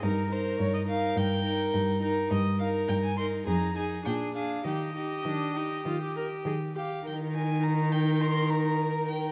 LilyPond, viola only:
\new Staff \with { instrumentName = "Viola" } { \time 4/4 \key ees \mixolydian \tempo 4 = 103 ees'8 ees'4 ees'4 ees'4 ees'8 | \key ees \major r8 ees'4 ees'8 ees'8 ees'8 d'8 d'8 | ees'8 ees'8 d'8 ees'8 f'16 g'16 bes'8 aes'8 g'8 | ees'1 | }